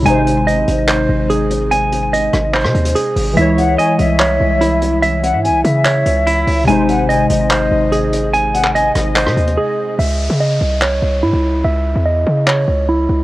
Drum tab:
HH |x-x-x-x-x---x-x-|x-x-x-x-x-xxx-o-|x-x-x-x-x---x-x-|x-x-x-x-x-x-x-o-|
CP |--------x-------|--------x-------|--------x-------|--------x-------|
SD |----------------|------r--r------|----------------|----------------|

HH |x-x-x-x-x---x-x-|x-x-x-x-x-xx----|----------------|----------------|
CP |--------x-------|---x----x-------|--------x-------|--------x-------|
SD |----------------|------r--r------|----------------|----------------|